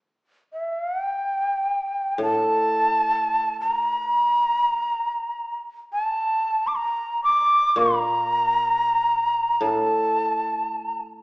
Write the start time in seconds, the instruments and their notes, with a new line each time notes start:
0.53 shakuhachi E5
0.80 shakuhachi F5
0.92 shakuhachi F#5
1.05 shakuhachi G5
2.18 koto A2
2.23 shakuhachi A5
3.61 shakuhachi A#5
5.93 shakuhachi A5
6.67 shakuhachi D6
6.76 shakuhachi A#5
7.24 shakuhachi D6
7.76 koto A#2, shakuhachi A#5
9.61 koto A2, shakuhachi A5